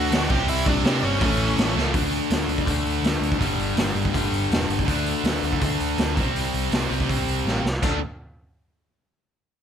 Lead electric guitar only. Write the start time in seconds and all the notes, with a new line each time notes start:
Already playing: F#4 F#5
0.31 G4 G5
0.49 E4 E5
0.67 D4 D5
1.04 C#4 C#5